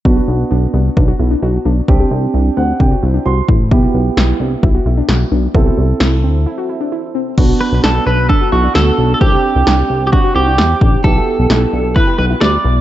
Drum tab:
CC |--------|--------|--------|--------|
SD |--------|--------|--o---o-|--o-----|
BD |o---o---|o---o--o|o---o---|o-------|

CC |x-------|--------|--------|
SD |--o---o-|--o---o-|--o---o-|
BD |o---o---|o---o--o|o---o---|